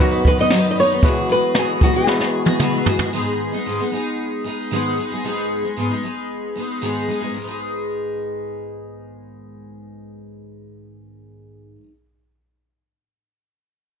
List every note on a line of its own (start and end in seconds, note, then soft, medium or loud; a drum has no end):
0.00 1.00 F#2 medium
0.00 1.00 D#3 medium
0.00 1.05 F#3 medium
0.00 0.12 B3 soft
0.00 1.01 B3 medium
0.00 0.11 D#4 medium
0.00 1.05 D#4 medium
0.00 1.04 F#4 medium
0.00 3.08 F#4 medium
0.00 0.27 F#4 medium
0.00 1.05 B4 medium
0.11 0.39 B3 soft
0.11 0.38 D#4 soft
0.11 0.36 B4 medium
0.11 shaker medium
0.25 0.40 B4 medium
0.25 kick medium
0.37 0.52 B3 soft
0.37 0.51 D#4 medium
0.37 0.51 B4 medium
0.37 0.70 D#5 loud
0.37 shaker medium
0.50 0.76 F#3 medium
0.50 0.77 B3 loud
0.50 0.78 D#4 medium
0.50 0.78 B4 medium
0.50 snare loud
0.50 shaker medium
0.65 shaker medium
0.71 0.77 D#5 medium
0.77 0.90 F#3 medium
0.77 0.90 B3 medium
0.77 0.90 D#4 medium
0.77 0.89 B4 medium
0.77 1.31 C#5 loud
0.77 shaker medium
0.90 1.04 B3 soft
0.90 1.04 D#4 medium
0.90 1.03 B4 medium
0.90 shaker soft
1.02 3.11 E3 medium
1.02 1.29 E3 medium
1.02 1.28 F#3 medium
1.02 1.96 G#3 medium
1.02 3.11 G#3 medium
1.02 1.96 B3 medium
1.02 1.28 B3 medium
1.02 1.96 E4 medium
1.02 1.97 F#4 medium
1.02 1.29 F#4 medium
1.02 1.30 G#4 medium
1.02 1.97 B4 medium
1.02 kick loud
1.02 shaker medium
1.15 shaker medium
1.29 1.55 F#3 medium
1.29 1.55 B3 medium
1.29 1.56 F#4 medium
1.29 1.56 G#4 medium
1.29 1.57 B4 medium
1.29 shaker medium
1.41 shaker medium
1.54 1.81 E3 medium
1.54 1.80 F#3 medium
1.54 1.81 B3 medium
1.54 1.82 F#4 medium
1.54 1.82 G#4 medium
1.54 snare loud
1.54 shaker medium
1.59 1.81 G#4 medium
1.68 shaker soft
1.81 1.94 F#3 medium
1.81 1.95 B3 medium
1.81 1.94 F#4 medium
1.81 1.95 F#4 medium
1.81 1.92 G#4 medium
1.81 kick loud
1.93 2.22 B3 soft
1.93 2.20 F#4 soft
1.93 2.19 G#4 medium
1.93 2.83 G#4 medium
1.93 shaker medium
2.07 3.01 G#3 medium
2.07 3.01 B3 medium
2.07 3.01 E4 medium
2.07 3.01 F#4 medium
2.07 3.02 B4 medium
2.07 snare medium
2.20 2.47 B3 soft
2.20 2.46 F#4 soft
2.20 2.44 G#4 medium
2.20 snare medium
2.45 2.59 B3 soft
2.45 2.59 F#4 medium
2.45 2.59 G#4 medium
2.45 high tom medium
2.59 2.86 E3 medium
2.59 2.84 F#3 loud
2.59 2.85 B3 loud
2.59 2.86 F#4 loud
2.59 2.87 G#4 loud
2.59 mid tom loud
2.85 2.99 F#3 medium
2.85 3.00 B3 medium
2.85 3.00 F#4 medium
2.85 2.98 G#4 medium
2.85 floor tom loud
2.99 3.12 B3 medium
2.99 3.13 F#4 medium
2.99 3.13 G#4 medium
2.99 floor tom loud
3.13 3.52 G#2 medium
3.13 3.52 D#3 medium
3.13 3.52 G#3 medium
3.13 3.53 B3 medium
3.13 3.52 D#4 medium
3.13 3.51 G#4 medium
3.52 3.65 G#3 soft
3.52 3.66 B3 soft
3.52 3.66 D#4 soft
3.52 3.65 G#4 medium
3.66 3.79 G#2 medium
3.66 3.79 D#3 medium
3.66 3.79 G#3 medium
3.66 3.79 B3 medium
3.66 3.79 D#4 medium
3.66 3.77 G#4 medium
3.79 3.90 G#3 soft
3.79 3.91 B3 medium
3.79 3.92 D#4 medium
3.79 3.92 G#4 medium
3.91 4.44 G#3 medium
3.91 4.45 B3 medium
3.91 4.46 D#4 medium
3.91 4.47 G#4 medium
4.44 4.71 G#3 medium
4.44 4.71 B3 medium
4.44 4.71 D#4 medium
4.44 4.72 G#4 medium
4.71 4.97 G#2 medium
4.71 4.97 D#3 medium
4.71 4.95 G#3 medium
4.71 4.96 B3 medium
4.71 4.97 D#4 medium
4.71 4.98 G#4 medium
4.96 5.10 G#3 medium
4.96 5.10 B3 medium
4.96 5.10 D#4 medium
4.96 5.09 G#4 medium
5.10 5.23 G#3 soft
5.10 5.24 B3 soft
5.10 5.24 D#4 soft
5.10 5.23 G#4 medium
5.23 5.63 G#2 medium
5.23 5.63 D#3 medium
5.23 5.63 G#3 medium
5.23 5.63 B3 medium
5.23 5.62 D#4 medium
5.23 5.61 G#4 medium
5.62 5.76 G#3 soft
5.62 5.76 B3 soft
5.62 5.76 D#4 soft
5.62 5.76 G#4 soft
5.76 5.89 G#2 medium
5.76 5.90 D#3 medium
5.76 5.90 G#3 medium
5.76 5.90 B3 medium
5.76 5.90 D#4 medium
5.76 5.89 G#4 medium
5.90 6.01 G#3 soft
5.90 6.02 B3 soft
5.90 6.03 D#4 soft
5.90 6.03 G#4 medium
6.02 6.55 G#3 medium
6.02 6.56 B3 medium
6.02 6.57 D#4 medium
6.02 6.58 G#4 medium
6.56 6.81 G#3 medium
6.56 6.81 B3 medium
6.56 6.82 D#4 medium
6.56 6.82 G#4 medium
6.81 7.08 G#2 medium
6.81 7.08 D#3 medium
6.81 7.07 G#3 medium
6.81 7.08 B3 medium
6.81 7.09 D#4 medium
6.81 7.09 G#4 medium
7.08 7.21 G#3 medium
7.08 7.21 B3 medium
7.08 7.20 D#4 medium
7.08 7.19 G#4 medium
7.20 7.36 G#3 soft
7.20 7.35 B3 soft
7.20 7.35 D#4 soft
7.20 7.34 G#4 soft
7.29 11.75 G#2 medium
7.34 11.80 D#3 medium
7.34 11.83 G#3 medium
7.42 11.88 B3 medium
7.42 11.91 D#4 medium
7.49 11.95 G#4 medium